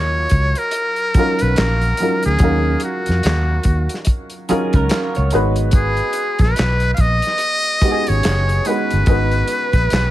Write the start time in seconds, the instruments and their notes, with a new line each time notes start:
Already playing: fingered electric bass D#2, upright piano F#3 C#4 D#4 F4 A#4, muted trumpet C#5
0.29 fingered electric bass C#2, kick, closed hi-hat
0.55 muted trumpet A#4, closed hi-hat
0.71 closed hi-hat
0.96 closed hi-hat
1.14 upright piano F#3 C#4 D#4, muted fingered electric bass stroke, kick, closed hi-hat
1.19 upright piano F4 A#4
1.39 fingered electric bass B1, muted trumpet B4, closed hi-hat
1.56 fingered electric bass A#1, muted trumpet A#4, snare, clap, closed hi-hat
1.82 closed hi-hat
1.97 upright piano F#3 C#4 D#4, closed hi-hat
2.02 upright piano F4 A#4
2.23 fingered electric bass D2, muted trumpet G#4, closed hi-hat
2.39 fingered electric bass D#2, upright piano F#3 C#4 D#4, kick, closed hi-hat
2.43 upright piano A#4 F5
2.80 muted trumpet F#4, closed hi-hat
3.06 fingered electric bass F2, closed hi-hat
3.10 snare
3.23 fingered electric bass D#2, snare, clap, closed hi-hat
3.63 fingered electric bass D#2, kick, closed hi-hat
3.89 closed hi-hat
3.94 snare
4.05 kick, closed hi-hat
4.30 closed hi-hat
4.49 upright piano F#3 C#4 D#4 F4 A#4, clean electric guitar G#4, muted fingered electric bass stroke, closed hi-hat
4.73 fingered electric bass C#2, clean electric guitar A#4, kick, closed hi-hat
4.89 snare, clap, closed hi-hat
5.15 fingered electric bass C#2, clean electric guitar C#5, closed hi-hat
5.31 fingered electric bass G#1, upright piano G#3 B3 D#4 F#4, closed hi-hat
5.35 upright piano B4
5.56 closed hi-hat
5.71 muted trumpet G#4, kick, closed hi-hat
5.97 closed hi-hat
6.13 closed hi-hat
6.39 fingered electric bass A#1, muted trumpet B4, kick, closed hi-hat
6.43 snare
6.56 fingered electric bass B1, snare, clap, closed hi-hat
6.80 closed hi-hat
6.94 muted trumpet F5, kick, closed hi-hat
6.99 fingered electric bass A#1, muted trumpet D#5
7.22 closed hi-hat
7.27 snare
7.38 closed hi-hat
7.64 closed hi-hat
7.82 upright piano G#3 B3 D#4 F#4 G4, muted fingered electric bass stroke, kick, closed hi-hat
7.91 upright piano G#4
8.07 fingered electric bass G#1, muted trumpet C#5, closed hi-hat
8.23 fingered electric bass F#1, snare, clap, closed hi-hat
8.49 closed hi-hat
8.65 upright piano G#3 B3 D#4 F#4 B4, muted trumpet B4, closed hi-hat
8.91 fingered electric bass G1, closed hi-hat
9.06 fingered electric bass G#1, upright piano G#3 B3 D#4 F#4 B4, kick, closed hi-hat
9.31 closed hi-hat
9.48 closed hi-hat
9.73 fingered electric bass A#1, kick, closed hi-hat
9.90 fingered electric bass B1, snare, clap, closed hi-hat